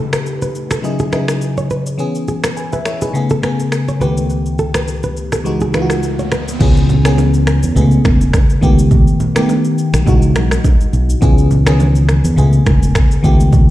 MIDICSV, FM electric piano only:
0, 0, Header, 1, 2, 480
1, 0, Start_track
1, 0, Key_signature, 4, "minor"
1, 0, Tempo, 576923
1, 1656, Time_signature, 4, 2, 24, 8
1, 11402, End_track
2, 0, Start_track
2, 0, Title_t, "FM electric piano"
2, 0, Program_c, 0, 5
2, 0, Control_c, 0, 64, 127
2, 0, Note_on_c, 0, 49, 88
2, 0, Note_on_c, 0, 57, 79
2, 0, Note_on_c, 0, 63, 77
2, 0, Note_on_c, 0, 67, 76
2, 0, Note_on_c, 0, 71, 98
2, 264, Note_off_c, 0, 49, 0
2, 266, Note_off_c, 0, 57, 0
2, 269, Note_off_c, 0, 63, 0
2, 271, Note_off_c, 0, 67, 0
2, 301, Note_off_c, 0, 71, 0
2, 685, Note_on_c, 0, 49, 83
2, 690, Note_on_c, 0, 54, 74
2, 696, Note_on_c, 0, 63, 79
2, 701, Note_on_c, 0, 64, 79
2, 706, Control_c, 0, 64, 0
2, 706, Note_on_c, 0, 68, 96
2, 834, Control_c, 0, 64, 127
2, 887, Note_off_c, 0, 49, 0
2, 890, Note_off_c, 0, 54, 0
2, 893, Note_off_c, 0, 63, 0
2, 895, Note_off_c, 0, 64, 0
2, 897, Note_off_c, 0, 68, 0
2, 924, Note_on_c, 0, 49, 77
2, 930, Note_on_c, 0, 54, 71
2, 935, Note_on_c, 0, 63, 73
2, 940, Note_on_c, 0, 64, 75
2, 945, Note_on_c, 0, 68, 92
2, 1381, Note_off_c, 0, 49, 0
2, 1383, Note_off_c, 0, 54, 0
2, 1386, Note_off_c, 0, 63, 0
2, 1388, Note_off_c, 0, 64, 0
2, 1391, Note_off_c, 0, 68, 0
2, 1644, Note_on_c, 0, 52, 83
2, 1652, Note_on_c, 0, 59, 76
2, 1658, Note_on_c, 0, 61, 74
2, 1665, Note_on_c, 0, 68, 90
2, 1667, Control_c, 0, 64, 0
2, 1796, Control_c, 0, 64, 127
2, 1900, Note_off_c, 0, 68, 0
2, 2136, Note_on_c, 0, 80, 60
2, 2142, Note_on_c, 0, 71, 49
2, 2258, Note_off_c, 0, 52, 0
2, 2261, Note_off_c, 0, 80, 0
2, 2262, Note_off_c, 0, 59, 0
2, 2264, Note_off_c, 0, 71, 0
2, 2265, Note_off_c, 0, 61, 0
2, 2268, Note_on_c, 0, 76, 68
2, 2273, Note_on_c, 0, 68, 56
2, 2370, Note_off_c, 0, 76, 0
2, 2373, Note_off_c, 0, 68, 0
2, 2378, Note_on_c, 0, 73, 66
2, 2383, Note_on_c, 0, 64, 58
2, 2502, Note_off_c, 0, 73, 0
2, 2505, Note_off_c, 0, 64, 0
2, 2509, Note_on_c, 0, 71, 66
2, 2515, Note_on_c, 0, 63, 56
2, 2607, Note_on_c, 0, 49, 86
2, 2614, Note_on_c, 0, 57, 75
2, 2621, Note_on_c, 0, 59, 78
2, 2625, Control_c, 0, 64, 0
2, 2628, Note_on_c, 0, 68, 92
2, 2736, Note_off_c, 0, 71, 0
2, 2740, Note_off_c, 0, 63, 0
2, 2770, Control_c, 0, 64, 127
2, 2808, Note_off_c, 0, 49, 0
2, 2812, Note_off_c, 0, 57, 0
2, 2815, Note_off_c, 0, 59, 0
2, 2818, Note_off_c, 0, 68, 0
2, 2845, Note_on_c, 0, 49, 82
2, 2852, Note_on_c, 0, 57, 74
2, 2859, Note_on_c, 0, 59, 76
2, 2866, Note_on_c, 0, 68, 90
2, 3301, Note_off_c, 0, 49, 0
2, 3305, Note_off_c, 0, 57, 0
2, 3308, Note_off_c, 0, 59, 0
2, 3312, Note_off_c, 0, 68, 0
2, 3326, Note_on_c, 0, 37, 84
2, 3331, Note_on_c, 0, 51, 80
2, 3336, Note_on_c, 0, 57, 79
2, 3342, Note_on_c, 0, 59, 79
2, 3345, Control_c, 0, 64, 0
2, 3346, Note_on_c, 0, 67, 92
2, 3488, Control_c, 0, 64, 127
2, 4103, Note_off_c, 0, 37, 0
2, 4106, Note_off_c, 0, 51, 0
2, 4108, Note_off_c, 0, 57, 0
2, 4111, Note_off_c, 0, 59, 0
2, 4114, Note_off_c, 0, 67, 0
2, 4525, Note_on_c, 0, 37, 85
2, 4531, Note_on_c, 0, 52, 80
2, 4536, Note_on_c, 0, 56, 78
2, 4542, Note_on_c, 0, 63, 78
2, 4547, Control_c, 0, 64, 0
2, 4547, Note_on_c, 0, 66, 91
2, 4682, Control_c, 0, 64, 127
2, 4727, Note_off_c, 0, 37, 0
2, 4730, Note_off_c, 0, 52, 0
2, 4733, Note_off_c, 0, 56, 0
2, 4736, Note_off_c, 0, 63, 0
2, 4738, Note_off_c, 0, 66, 0
2, 4766, Note_on_c, 0, 37, 80
2, 4771, Note_on_c, 0, 52, 75
2, 4777, Note_on_c, 0, 56, 75
2, 4781, Note_on_c, 0, 63, 73
2, 4787, Note_on_c, 0, 65, 70
2, 4841, Note_off_c, 0, 65, 0
2, 4841, Note_on_c, 0, 66, 91
2, 5221, Note_off_c, 0, 37, 0
2, 5224, Note_off_c, 0, 52, 0
2, 5227, Note_off_c, 0, 56, 0
2, 5229, Note_off_c, 0, 63, 0
2, 5259, Note_off_c, 0, 66, 0
2, 5485, Note_on_c, 0, 52, 87
2, 5492, Note_on_c, 0, 59, 75
2, 5499, Note_on_c, 0, 61, 75
2, 5506, Control_c, 0, 64, 0
2, 5506, Note_on_c, 0, 68, 95
2, 5657, Control_c, 0, 64, 127
2, 5716, Note_off_c, 0, 52, 0
2, 5719, Note_off_c, 0, 59, 0
2, 5723, Note_off_c, 0, 61, 0
2, 5726, Note_off_c, 0, 68, 0
2, 5859, Note_on_c, 0, 52, 88
2, 5866, Note_on_c, 0, 59, 76
2, 5872, Note_on_c, 0, 61, 81
2, 5879, Note_on_c, 0, 68, 90
2, 6226, Note_off_c, 0, 52, 0
2, 6229, Note_off_c, 0, 59, 0
2, 6232, Note_off_c, 0, 61, 0
2, 6236, Note_off_c, 0, 68, 0
2, 6446, Note_on_c, 0, 48, 69
2, 6453, Note_on_c, 0, 57, 75
2, 6460, Note_on_c, 0, 59, 74
2, 6465, Control_c, 0, 64, 0
2, 6467, Note_on_c, 0, 68, 90
2, 6500, Note_on_c, 0, 49, 84
2, 6510, Note_off_c, 0, 48, 0
2, 6626, Control_c, 0, 64, 127
2, 7062, Note_off_c, 0, 57, 0
2, 7066, Note_off_c, 0, 59, 0
2, 7069, Note_off_c, 0, 68, 0
2, 7086, Note_off_c, 0, 49, 0
2, 7166, Note_on_c, 0, 51, 93
2, 7173, Note_on_c, 0, 57, 82
2, 7180, Note_on_c, 0, 59, 83
2, 7187, Note_on_c, 0, 67, 95
2, 7188, Control_c, 0, 64, 0
2, 7323, Control_c, 0, 64, 127
2, 7651, Note_off_c, 0, 51, 0
2, 7654, Note_off_c, 0, 57, 0
2, 7658, Note_off_c, 0, 59, 0
2, 7661, Note_off_c, 0, 67, 0
2, 7778, Note_on_c, 0, 51, 86
2, 7785, Note_on_c, 0, 57, 78
2, 7793, Note_on_c, 0, 59, 77
2, 7799, Note_on_c, 0, 67, 91
2, 8145, Note_off_c, 0, 51, 0
2, 8149, Note_off_c, 0, 57, 0
2, 8152, Note_off_c, 0, 59, 0
2, 8156, Note_off_c, 0, 67, 0
2, 8366, Note_on_c, 0, 52, 82
2, 8374, Note_on_c, 0, 56, 78
2, 8380, Note_on_c, 0, 63, 75
2, 8386, Control_c, 0, 64, 0
2, 8388, Note_on_c, 0, 66, 92
2, 8539, Control_c, 0, 64, 127
2, 8979, Note_off_c, 0, 52, 0
2, 8983, Note_off_c, 0, 56, 0
2, 8986, Note_off_c, 0, 63, 0
2, 8990, Note_off_c, 0, 66, 0
2, 9325, Note_on_c, 0, 52, 88
2, 9332, Note_on_c, 0, 59, 81
2, 9340, Note_on_c, 0, 61, 78
2, 9345, Control_c, 0, 64, 0
2, 9346, Note_on_c, 0, 68, 98
2, 9512, Control_c, 0, 64, 127
2, 9556, Note_off_c, 0, 52, 0
2, 9559, Note_off_c, 0, 59, 0
2, 9563, Note_off_c, 0, 61, 0
2, 9566, Note_off_c, 0, 68, 0
2, 9698, Note_on_c, 0, 51, 71
2, 9705, Note_on_c, 0, 59, 75
2, 9712, Note_on_c, 0, 61, 78
2, 9719, Note_on_c, 0, 68, 96
2, 9752, Note_off_c, 0, 51, 0
2, 9752, Note_on_c, 0, 52, 83
2, 10069, Note_off_c, 0, 59, 0
2, 10072, Note_off_c, 0, 61, 0
2, 10075, Note_off_c, 0, 68, 0
2, 10092, Note_off_c, 0, 52, 0
2, 10285, Note_on_c, 0, 49, 80
2, 10292, Note_on_c, 0, 57, 78
2, 10299, Note_on_c, 0, 59, 76
2, 10305, Control_c, 0, 64, 0
2, 10306, Note_on_c, 0, 68, 96
2, 10467, Control_c, 0, 64, 127
2, 10898, Note_off_c, 0, 49, 0
2, 10902, Note_off_c, 0, 57, 0
2, 10905, Note_off_c, 0, 59, 0
2, 10909, Note_off_c, 0, 68, 0
2, 11006, Note_on_c, 0, 51, 92
2, 11013, Note_on_c, 0, 57, 84
2, 11019, Note_on_c, 0, 59, 78
2, 11026, Control_c, 0, 64, 0
2, 11027, Note_on_c, 0, 67, 99
2, 11166, Control_c, 0, 64, 127
2, 11402, Note_off_c, 0, 51, 0
2, 11402, Note_off_c, 0, 57, 0
2, 11402, Note_off_c, 0, 59, 0
2, 11402, Note_off_c, 0, 67, 0
2, 11402, End_track
0, 0, End_of_file